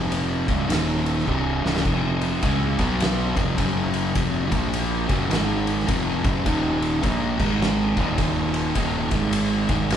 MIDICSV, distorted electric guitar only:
0, 0, Header, 1, 2, 480
1, 0, Start_track
1, 0, Tempo, 575816
1, 1535, Time_signature, 4, 2, 24, 8
1, 8308, End_track
2, 0, Start_track
2, 0, Title_t, "Distorted electric guitar"
2, 0, Program_c, 0, 30
2, 0, Note_on_c, 0, 41, 91
2, 0, Note_on_c, 0, 48, 96
2, 0, Note_on_c, 0, 53, 99
2, 387, Note_off_c, 0, 41, 0
2, 388, Note_off_c, 0, 48, 0
2, 389, Note_off_c, 0, 53, 0
2, 393, Note_on_c, 0, 37, 85
2, 401, Note_on_c, 0, 44, 92
2, 402, Note_on_c, 0, 49, 103
2, 567, Note_off_c, 0, 37, 0
2, 571, Note_off_c, 0, 44, 0
2, 572, Note_off_c, 0, 49, 0
2, 574, Note_on_c, 0, 39, 94
2, 578, Note_on_c, 0, 46, 90
2, 584, Note_on_c, 0, 51, 99
2, 1049, Note_off_c, 0, 39, 0
2, 1051, Note_off_c, 0, 46, 0
2, 1054, Note_off_c, 0, 51, 0
2, 1054, Note_on_c, 0, 36, 82
2, 1060, Note_on_c, 0, 43, 108
2, 1066, Note_on_c, 0, 48, 106
2, 1347, Note_off_c, 0, 36, 0
2, 1350, Note_off_c, 0, 43, 0
2, 1352, Note_off_c, 0, 48, 0
2, 1361, Note_on_c, 0, 37, 82
2, 1367, Note_on_c, 0, 44, 99
2, 1370, Note_on_c, 0, 49, 107
2, 1532, Note_off_c, 0, 37, 0
2, 1535, Note_off_c, 0, 44, 0
2, 1536, Note_off_c, 0, 49, 0
2, 1536, Note_on_c, 0, 41, 91
2, 1542, Note_on_c, 0, 48, 99
2, 1545, Note_on_c, 0, 53, 103
2, 2011, Note_off_c, 0, 41, 0
2, 2013, Note_off_c, 0, 48, 0
2, 2015, Note_off_c, 0, 53, 0
2, 2023, Note_on_c, 0, 49, 100
2, 2030, Note_on_c, 0, 56, 97
2, 2034, Note_on_c, 0, 61, 115
2, 2312, Note_off_c, 0, 49, 0
2, 2315, Note_off_c, 0, 56, 0
2, 2317, Note_off_c, 0, 61, 0
2, 2318, Note_on_c, 0, 47, 75
2, 2325, Note_on_c, 0, 54, 95
2, 2331, Note_on_c, 0, 59, 99
2, 2789, Note_off_c, 0, 47, 0
2, 2792, Note_off_c, 0, 54, 0
2, 2795, Note_off_c, 0, 59, 0
2, 2801, Note_on_c, 0, 41, 81
2, 2807, Note_on_c, 0, 48, 109
2, 2809, Note_on_c, 0, 53, 95
2, 2972, Note_off_c, 0, 41, 0
2, 2975, Note_off_c, 0, 48, 0
2, 2975, Note_on_c, 0, 42, 93
2, 2977, Note_off_c, 0, 53, 0
2, 2980, Note_on_c, 0, 49, 85
2, 2987, Note_on_c, 0, 54, 109
2, 3451, Note_off_c, 0, 42, 0
2, 3453, Note_off_c, 0, 49, 0
2, 3456, Note_on_c, 0, 41, 85
2, 3457, Note_off_c, 0, 54, 0
2, 3461, Note_on_c, 0, 48, 100
2, 3465, Note_on_c, 0, 53, 91
2, 3754, Note_off_c, 0, 41, 0
2, 3754, Note_on_c, 0, 46, 96
2, 3757, Note_off_c, 0, 48, 0
2, 3757, Note_off_c, 0, 53, 0
2, 3757, Note_on_c, 0, 53, 94
2, 3761, Note_on_c, 0, 58, 98
2, 4227, Note_off_c, 0, 46, 0
2, 4228, Note_off_c, 0, 53, 0
2, 4231, Note_off_c, 0, 58, 0
2, 4236, Note_on_c, 0, 42, 87
2, 4239, Note_on_c, 0, 49, 94
2, 4247, Note_on_c, 0, 54, 105
2, 4410, Note_off_c, 0, 42, 0
2, 4412, Note_off_c, 0, 49, 0
2, 4416, Note_off_c, 0, 54, 0
2, 4417, Note_on_c, 0, 44, 86
2, 4423, Note_on_c, 0, 51, 98
2, 4425, Note_on_c, 0, 56, 125
2, 4890, Note_off_c, 0, 44, 0
2, 4893, Note_off_c, 0, 51, 0
2, 4893, Note_on_c, 0, 41, 103
2, 4895, Note_off_c, 0, 56, 0
2, 4896, Note_on_c, 0, 48, 110
2, 4904, Note_on_c, 0, 53, 104
2, 5187, Note_off_c, 0, 41, 0
2, 5189, Note_off_c, 0, 48, 0
2, 5192, Note_off_c, 0, 53, 0
2, 5198, Note_on_c, 0, 42, 92
2, 5203, Note_on_c, 0, 49, 97
2, 5207, Note_on_c, 0, 54, 100
2, 5371, Note_off_c, 0, 42, 0
2, 5373, Note_off_c, 0, 49, 0
2, 5375, Note_off_c, 0, 54, 0
2, 5380, Note_on_c, 0, 39, 95
2, 5384, Note_on_c, 0, 46, 91
2, 5386, Note_on_c, 0, 51, 102
2, 5846, Note_off_c, 0, 46, 0
2, 5852, Note_off_c, 0, 39, 0
2, 5855, Note_off_c, 0, 51, 0
2, 5856, Note_on_c, 0, 46, 101
2, 5860, Note_on_c, 0, 53, 105
2, 5867, Note_on_c, 0, 58, 100
2, 6148, Note_off_c, 0, 46, 0
2, 6150, Note_off_c, 0, 53, 0
2, 6153, Note_off_c, 0, 58, 0
2, 6159, Note_on_c, 0, 44, 85
2, 6166, Note_on_c, 0, 51, 95
2, 6167, Note_on_c, 0, 56, 100
2, 6628, Note_off_c, 0, 44, 0
2, 6632, Note_off_c, 0, 51, 0
2, 6632, Note_off_c, 0, 56, 0
2, 6644, Note_on_c, 0, 39, 102
2, 6648, Note_on_c, 0, 46, 107
2, 6650, Note_on_c, 0, 51, 97
2, 6809, Note_off_c, 0, 39, 0
2, 6811, Note_off_c, 0, 46, 0
2, 6816, Note_off_c, 0, 51, 0
2, 6819, Note_on_c, 0, 39, 93
2, 6821, Note_on_c, 0, 46, 104
2, 6825, Note_on_c, 0, 51, 107
2, 7287, Note_off_c, 0, 39, 0
2, 7292, Note_off_c, 0, 46, 0
2, 7294, Note_off_c, 0, 51, 0
2, 7297, Note_on_c, 0, 39, 81
2, 7301, Note_on_c, 0, 46, 94
2, 7304, Note_on_c, 0, 51, 106
2, 7588, Note_off_c, 0, 39, 0
2, 7590, Note_off_c, 0, 46, 0
2, 7591, Note_off_c, 0, 51, 0
2, 7601, Note_on_c, 0, 44, 109
2, 7602, Note_on_c, 0, 51, 102
2, 7609, Note_on_c, 0, 56, 92
2, 8065, Note_off_c, 0, 44, 0
2, 8070, Note_off_c, 0, 51, 0
2, 8073, Note_off_c, 0, 56, 0
2, 8075, Note_on_c, 0, 44, 102
2, 8080, Note_on_c, 0, 51, 88
2, 8085, Note_on_c, 0, 56, 100
2, 8308, Note_off_c, 0, 44, 0
2, 8308, Note_off_c, 0, 51, 0
2, 8308, Note_off_c, 0, 56, 0
2, 8308, End_track
0, 0, End_of_file